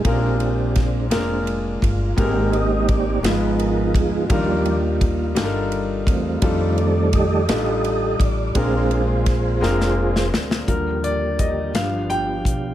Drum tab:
RD |x-x-x-x-x-x-|x-x-x-x-x-x-|x-x-x-x-x-x-|x-x-x-x-x-x-|
HH |------------|------------|------------|------------|
SD |----o-o-----|------o-----|------o-----|------o-----|
BD |o---o-----o-|o---o-----o-|o---o-----o-|o---o-----o-|

RD |x-x-x-------|------------|
HH |------------|x-x-x-x-x-x-|
SD |----o-oo-ooo|------o-----|
BD |o---o-------|o---o-----o-|